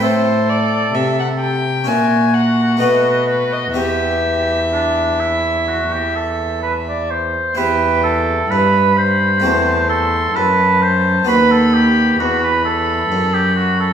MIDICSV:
0, 0, Header, 1, 5, 480
1, 0, Start_track
1, 0, Key_signature, 1, "minor"
1, 0, Tempo, 927357
1, 12, Time_signature, 4, 2, 24, 8
1, 1452, Tempo, 953895
1, 3852, Tempo, 921659
1, 7162, End_track
2, 0, Start_track
2, 0, Title_t, "Violin"
2, 0, Program_c, 0, 40
2, 11, Note_on_c, 0, 72, 64
2, 253, Note_on_c, 0, 74, 58
2, 261, Note_off_c, 0, 72, 0
2, 490, Note_on_c, 0, 76, 58
2, 497, Note_off_c, 0, 74, 0
2, 608, Note_off_c, 0, 76, 0
2, 619, Note_on_c, 0, 78, 54
2, 660, Note_off_c, 0, 78, 0
2, 727, Note_on_c, 0, 79, 61
2, 969, Note_on_c, 0, 80, 52
2, 977, Note_off_c, 0, 79, 0
2, 1209, Note_on_c, 0, 78, 55
2, 1216, Note_off_c, 0, 80, 0
2, 1449, Note_on_c, 0, 75, 48
2, 1457, Note_off_c, 0, 78, 0
2, 1691, Note_off_c, 0, 75, 0
2, 1694, Note_on_c, 0, 71, 52
2, 1816, Note_on_c, 0, 75, 45
2, 1824, Note_off_c, 0, 71, 0
2, 1929, Note_off_c, 0, 75, 0
2, 1932, Note_on_c, 0, 76, 57
2, 3595, Note_off_c, 0, 76, 0
2, 3852, Note_on_c, 0, 79, 50
2, 4317, Note_off_c, 0, 79, 0
2, 4342, Note_on_c, 0, 83, 38
2, 4820, Note_on_c, 0, 81, 44
2, 4828, Note_off_c, 0, 83, 0
2, 5060, Note_on_c, 0, 84, 50
2, 5068, Note_off_c, 0, 81, 0
2, 5297, Note_on_c, 0, 81, 44
2, 5305, Note_off_c, 0, 84, 0
2, 5780, Note_on_c, 0, 83, 50
2, 5788, Note_off_c, 0, 81, 0
2, 6252, Note_off_c, 0, 83, 0
2, 6256, Note_on_c, 0, 83, 45
2, 7162, Note_off_c, 0, 83, 0
2, 7162, End_track
3, 0, Start_track
3, 0, Title_t, "Oboe"
3, 0, Program_c, 1, 68
3, 12, Note_on_c, 1, 69, 60
3, 805, Note_off_c, 1, 69, 0
3, 971, Note_on_c, 1, 66, 46
3, 1915, Note_off_c, 1, 66, 0
3, 1939, Note_on_c, 1, 67, 36
3, 2361, Note_off_c, 1, 67, 0
3, 2417, Note_on_c, 1, 62, 49
3, 2657, Note_on_c, 1, 64, 41
3, 2665, Note_off_c, 1, 62, 0
3, 2893, Note_off_c, 1, 64, 0
3, 2896, Note_on_c, 1, 66, 44
3, 3020, Note_on_c, 1, 67, 41
3, 3027, Note_off_c, 1, 66, 0
3, 3139, Note_on_c, 1, 69, 45
3, 3147, Note_off_c, 1, 67, 0
3, 3372, Note_off_c, 1, 69, 0
3, 3375, Note_on_c, 1, 71, 54
3, 3429, Note_off_c, 1, 71, 0
3, 3502, Note_on_c, 1, 74, 49
3, 3616, Note_on_c, 1, 72, 52
3, 3624, Note_off_c, 1, 74, 0
3, 3848, Note_on_c, 1, 71, 64
3, 3856, Note_off_c, 1, 72, 0
3, 4088, Note_off_c, 1, 71, 0
3, 4092, Note_on_c, 1, 69, 65
3, 4338, Note_on_c, 1, 71, 66
3, 4346, Note_off_c, 1, 69, 0
3, 4581, Note_on_c, 1, 72, 68
3, 4589, Note_off_c, 1, 71, 0
3, 5055, Note_off_c, 1, 72, 0
3, 5059, Note_on_c, 1, 69, 64
3, 5303, Note_on_c, 1, 71, 68
3, 5311, Note_off_c, 1, 69, 0
3, 5543, Note_on_c, 1, 72, 71
3, 5551, Note_off_c, 1, 71, 0
3, 5776, Note_off_c, 1, 72, 0
3, 5779, Note_on_c, 1, 71, 67
3, 5905, Note_on_c, 1, 69, 59
3, 5913, Note_off_c, 1, 71, 0
3, 6019, Note_on_c, 1, 67, 67
3, 6027, Note_off_c, 1, 69, 0
3, 6256, Note_off_c, 1, 67, 0
3, 6259, Note_on_c, 1, 66, 65
3, 6377, Note_off_c, 1, 66, 0
3, 6383, Note_on_c, 1, 71, 60
3, 6491, Note_off_c, 1, 71, 0
3, 6495, Note_on_c, 1, 69, 65
3, 6854, Note_on_c, 1, 67, 60
3, 6862, Note_off_c, 1, 69, 0
3, 6965, Note_off_c, 1, 67, 0
3, 6968, Note_on_c, 1, 66, 59
3, 7087, Note_off_c, 1, 66, 0
3, 7094, Note_on_c, 1, 69, 56
3, 7162, Note_off_c, 1, 69, 0
3, 7162, End_track
4, 0, Start_track
4, 0, Title_t, "Harpsichord"
4, 0, Program_c, 2, 6
4, 0, Note_on_c, 2, 57, 32
4, 0, Note_on_c, 2, 60, 33
4, 0, Note_on_c, 2, 64, 36
4, 10, Note_on_c, 2, 45, 37
4, 466, Note_off_c, 2, 45, 0
4, 491, Note_on_c, 2, 48, 38
4, 934, Note_off_c, 2, 57, 0
4, 937, Note_off_c, 2, 60, 0
4, 941, Note_off_c, 2, 64, 0
4, 949, Note_off_c, 2, 48, 0
4, 952, Note_on_c, 2, 61, 29
4, 961, Note_on_c, 2, 64, 32
4, 970, Note_on_c, 2, 46, 34
4, 1431, Note_off_c, 2, 61, 0
4, 1434, Note_off_c, 2, 46, 0
4, 1434, Note_on_c, 2, 57, 27
4, 1435, Note_off_c, 2, 64, 0
4, 1442, Note_on_c, 2, 59, 27
4, 1450, Note_on_c, 2, 66, 31
4, 1455, Note_on_c, 2, 47, 32
4, 1910, Note_off_c, 2, 57, 0
4, 1914, Note_off_c, 2, 59, 0
4, 1915, Note_off_c, 2, 47, 0
4, 1917, Note_off_c, 2, 66, 0
4, 1922, Note_on_c, 2, 59, 28
4, 1929, Note_on_c, 2, 67, 32
4, 1936, Note_on_c, 2, 40, 33
4, 3731, Note_off_c, 2, 40, 0
4, 3826, Note_off_c, 2, 59, 0
4, 3830, Note_off_c, 2, 67, 0
4, 3838, Note_on_c, 2, 64, 36
4, 3850, Note_on_c, 2, 67, 36
4, 3854, Note_on_c, 2, 40, 39
4, 4318, Note_off_c, 2, 40, 0
4, 4344, Note_on_c, 2, 43, 41
4, 4792, Note_off_c, 2, 64, 0
4, 4798, Note_off_c, 2, 67, 0
4, 4801, Note_on_c, 2, 57, 34
4, 4802, Note_off_c, 2, 43, 0
4, 4811, Note_on_c, 2, 60, 33
4, 4820, Note_on_c, 2, 66, 35
4, 4828, Note_on_c, 2, 40, 38
4, 5282, Note_off_c, 2, 40, 0
4, 5306, Note_on_c, 2, 42, 36
4, 5748, Note_off_c, 2, 57, 0
4, 5752, Note_off_c, 2, 60, 0
4, 5757, Note_off_c, 2, 66, 0
4, 5760, Note_off_c, 2, 42, 0
4, 5764, Note_on_c, 2, 59, 32
4, 5772, Note_on_c, 2, 66, 39
4, 5787, Note_on_c, 2, 39, 41
4, 6242, Note_off_c, 2, 39, 0
4, 6263, Note_on_c, 2, 40, 41
4, 6719, Note_off_c, 2, 40, 0
4, 6739, Note_on_c, 2, 42, 40
4, 7162, Note_off_c, 2, 42, 0
4, 7162, Note_off_c, 2, 59, 0
4, 7162, Note_off_c, 2, 66, 0
4, 7162, End_track
5, 0, Start_track
5, 0, Title_t, "Cello"
5, 0, Program_c, 3, 42
5, 14, Note_on_c, 3, 45, 48
5, 467, Note_off_c, 3, 45, 0
5, 489, Note_on_c, 3, 48, 42
5, 969, Note_on_c, 3, 46, 46
5, 976, Note_off_c, 3, 48, 0
5, 1452, Note_on_c, 3, 47, 42
5, 1460, Note_off_c, 3, 46, 0
5, 1928, Note_off_c, 3, 47, 0
5, 1931, Note_on_c, 3, 40, 45
5, 3729, Note_off_c, 3, 40, 0
5, 3851, Note_on_c, 3, 40, 52
5, 4317, Note_off_c, 3, 40, 0
5, 4340, Note_on_c, 3, 43, 49
5, 4821, Note_on_c, 3, 40, 52
5, 4829, Note_off_c, 3, 43, 0
5, 5294, Note_off_c, 3, 40, 0
5, 5298, Note_on_c, 3, 42, 52
5, 5767, Note_off_c, 3, 42, 0
5, 5780, Note_on_c, 3, 39, 54
5, 6249, Note_off_c, 3, 39, 0
5, 6258, Note_on_c, 3, 40, 50
5, 6728, Note_off_c, 3, 40, 0
5, 6736, Note_on_c, 3, 42, 49
5, 7162, Note_off_c, 3, 42, 0
5, 7162, End_track
0, 0, End_of_file